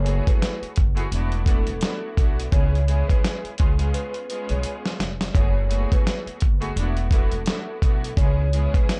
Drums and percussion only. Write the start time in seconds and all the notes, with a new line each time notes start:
0.06 closed hi-hat
0.27 kick, closed hi-hat
0.42 snare, closed hi-hat
0.63 closed hi-hat
0.76 kick, closed hi-hat
0.97 closed hi-hat
1.12 closed hi-hat
1.32 closed hi-hat
1.46 kick, closed hi-hat
1.67 closed hi-hat
1.81 snare, closed hi-hat
2.17 kick, closed hi-hat
2.40 closed hi-hat
2.52 kick, closed hi-hat
2.75 closed hi-hat
2.88 closed hi-hat
3.09 kick, closed hi-hat
3.24 snare, closed hi-hat
3.45 closed hi-hat
3.58 kick, closed hi-hat
3.79 closed hi-hat
3.94 closed hi-hat
4.14 closed hi-hat
4.30 closed hi-hat
4.49 closed hi-hat
4.63 closed hi-hat
4.86 snare, closed hi-hat
5.00 snare, closed hi-hat
5.21 snare, closed hi-hat
5.35 kick, closed hi-hat
5.71 closed hi-hat
5.92 kick, closed hi-hat
6.07 snare, closed hi-hat
6.27 closed hi-hat
6.40 kick, closed hi-hat
6.62 closed hi-hat
6.77 closed hi-hat
6.97 closed hi-hat
7.11 kick, closed hi-hat
7.32 closed hi-hat
7.46 snare, closed hi-hat
7.82 kick, closed hi-hat
8.04 closed hi-hat
8.17 kick, closed hi-hat
8.53 closed hi-hat
8.74 kick, closed hi-hat
8.89 snare, closed hi-hat